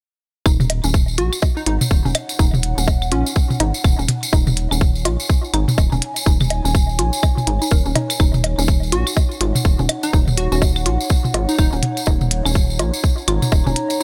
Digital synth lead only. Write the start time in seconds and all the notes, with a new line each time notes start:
1.18 F#4
1.57 D#4
1.67 D#4
3.12 C#4
8.92 F#4
10.03 D#4
10.38 F#4
10.52 F#4
11.49 D#4
11.59 D#4